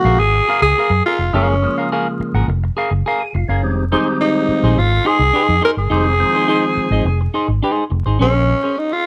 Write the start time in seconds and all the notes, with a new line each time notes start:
Already playing: C#3 F3 G#3 A#3 F#4
0.05 A#1 G#4 A#4 F5
0.18 G#1 G#4, muted clean electric guitar stroke
0.35 muted clean electric guitar stroke
0.48 G#4 A#4 F5
0.62 C#2 G#4, muted clean electric guitar stroke
0.78 G#4 A#4 F5
0.90 F#2, muted clean electric guitar stroke
1.06 F4 G#4 A#4 F5
1.19 F1, muted clean electric guitar stroke
1.33 F#1 C#3 F3 G#3 A#3 C#4 G#4 A#4 F5
1.49 muted clean electric guitar stroke
1.62 C#3 F3 G#3 A#3, muted clean electric guitar stroke
1.78 G#4 A#4 F5
1.92 G#4 A#4 F5
2.20 muted fingered electric bass stroke, muted clean electric guitar stroke
2.34 G#1 G#4 A#4 F#5
2.48 F1, muted clean electric guitar stroke
2.64 muted clean electric guitar stroke
2.77 G#4 A#4 F5
2.91 F#1, muted clean electric guitar stroke
3.06 G#4 A#4 F5
3.20 G#4
3.34 F1 F4, muted clean electric guitar stroke
3.48 F#1 C#4 G#4 A#4 F5
3.63 F1 D#3 G3 G#3 C4
3.92 D#3 G3 G#3 C4 D#4 G#4 C5
4.21 D#4, muted clean electric guitar stroke
4.35 muted clean electric guitar stroke
4.48 muted fingered electric bass stroke
4.63 A#1 D#4 G#4 C5
4.77 G#1 F4, muted clean electric guitar stroke
4.91 muted clean electric guitar stroke
5.05 D#4 G#4 C5
5.19 C2, muted clean electric guitar stroke
5.33 D#4 G#4 C5
5.48 F2, muted clean electric guitar stroke
5.62 D#4 G#4 A#4 C5
5.77 G1 G#4, muted clean electric guitar stroke
5.90 F1 D#3 G3 G#3 C4 D#4 G#4 C5
6.05 muted clean electric guitar stroke
6.20 D#3 F3 G#3 C4, muted clean electric guitar stroke
6.34 D#4 G#4 C5
6.48 D#4 G#4 C5
6.77 muted fingered electric bass stroke, muted clean electric guitar stroke
6.91 G#1 D#4 G#4 D#5
7.05 F1, muted clean electric guitar stroke
7.21 muted clean electric guitar stroke
7.34 D#4 G#4 C5
7.48 G#1, muted clean electric guitar stroke
7.63 D#4 G#4 C5
7.90 F1, muted clean electric guitar stroke
8.06 G#1 D#4 G#4 C5
8.19 A#1 C#4 G#4 C5
8.34 muted clean electric guitar stroke
8.50 muted clean electric guitar stroke
8.63 C#4 G#4 C5
8.78 D#4, muted clean electric guitar stroke
8.91 F4, muted clean electric guitar stroke